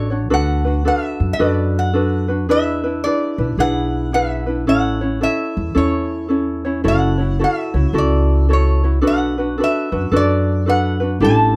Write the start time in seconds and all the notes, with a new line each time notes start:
Already playing: A1 D4 A4 C#5
0.10 D4 F#4 C#5
0.30 D2 D4 F#4 A4 B4 F#5
0.65 D4 F#4 B4
0.85 D4 F#4 A4 B4 F5
1.05 E5
1.20 F#2
1.33 D#5
1.39 F#2 D4 F#4 A4 B4
1.50 D5
1.79 F#5
1.93 D4 F#4 A4 B4
2.28 D4 F#4 B4
2.48 E2 D4 E4 G#4 B4 E5
2.83 D4 E4 B4
3.04 D4 E4 G#4 B4 D5
3.38 B1 D4 E4 B4
3.58 B1 D4 E4 G#4 B4 F#5
4.13 D4 E4 G#4 B4 E5
4.46 D4 E4 B4
4.67 A1 C#4 E4 A4 C#5 F#5
5.01 C#4 E4 C#5
5.21 C#4 E4 A4 C#5 E5
5.57 E2
5.75 E2 C#4 E4 A4 C#5
6.28 C#4 E4 A4 C#5
6.65 C#4 E4 C#5
6.84 F#1 E4 F#4 A4 C#5
6.88 F#5
7.18 E4 F#4 C#5
7.39 E4 F#4 A4 C#5
7.44 E5
7.74 C#2 E4 F#4 C#5
7.93 C#2 E4 F#4 A4
7.98 D5
8.49 E4 F#4 A4 C#5
8.53 C#5
8.83 E4 F#4 C#5
9.01 B1 D4 F#4 A4 B4
9.07 F#5
9.38 D4 F#4 B4
9.58 D4 F#4 A4 B4
9.64 E5
9.92 F#2 D4 F#4 B4
10.12 F#2 D4 F#4 A4 B4
10.16 D5
10.66 D4 F#4 A4 B4 F#5
11.00 D4 F#4 B4
11.20 A1 D4 E4 G4 A4
11.24 A5